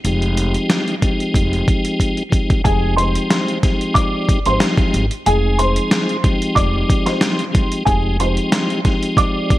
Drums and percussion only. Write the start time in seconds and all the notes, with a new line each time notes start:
0.05 closed hi-hat
0.22 closed hi-hat
0.37 closed hi-hat
0.55 closed hi-hat
0.70 snare, closed hi-hat
0.88 closed hi-hat
1.02 kick, closed hi-hat
1.20 closed hi-hat
1.34 kick, closed hi-hat
1.53 closed hi-hat
1.68 kick, closed hi-hat
1.85 closed hi-hat
2.00 kick, closed hi-hat
2.17 closed hi-hat
2.32 kick, closed hi-hat
2.50 kick, closed hi-hat
2.65 kick, closed hi-hat
2.98 closed hi-hat
3.15 closed hi-hat
3.30 snare, closed hi-hat
3.48 closed hi-hat
3.63 kick, snare, closed hi-hat
3.81 closed hi-hat
3.95 kick, closed hi-hat
4.29 kick, closed hi-hat
4.46 closed hi-hat
4.60 snare, closed hi-hat
4.77 kick, closed hi-hat
4.94 closed hi-hat
5.11 closed hi-hat
5.26 closed hi-hat
5.59 closed hi-hat
5.76 closed hi-hat
5.91 snare, closed hi-hat
6.09 closed hi-hat
6.24 kick, closed hi-hat
6.42 closed hi-hat
6.56 kick, closed hi-hat
6.90 kick, closed hi-hat
7.06 snare, closed hi-hat
7.21 snare, closed hi-hat
7.39 closed hi-hat
7.55 kick, closed hi-hat
7.72 closed hi-hat
7.87 kick, closed hi-hat
8.20 closed hi-hat
8.37 closed hi-hat
8.52 snare, closed hi-hat
8.70 closed hi-hat
8.85 kick, snare, closed hi-hat
9.03 closed hi-hat
9.17 kick, closed hi-hat
9.50 kick, closed hi-hat